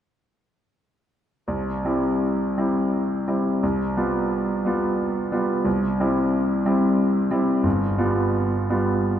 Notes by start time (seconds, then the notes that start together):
1.48 C2
1.85 G3 C4 E4
2.58 G3 C4 E4
3.28 G3 C4 E4
3.63 C2
3.97 G3 B3 F4
4.65 G3 B3 F4
5.32 G3 B3 F4
5.65 C2
6.00 G3 C4 E4
6.65 G3 C4 E4
7.31 G3 C4 E4
7.63 G1
7.98 G3 B3 F4
8.70 G3 B3 F4